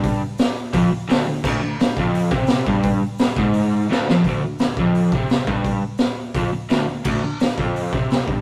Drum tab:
CC |--------|x-------|--------|--------|
HH |o-o-o-o-|--o-o-o-|o-o-o---|o-o-o-o-|
SD |--o---o-|--o---o-|--o---oo|--o---o-|
BD |o---o---|o--o-o-o|o--o----|o--o-o-o|

CC |--------|x-------|
HH |o-o-o-o-|--o-o-o-|
SD |--o---o-|--o---o-|
BD |o---o---|o--o-o-o|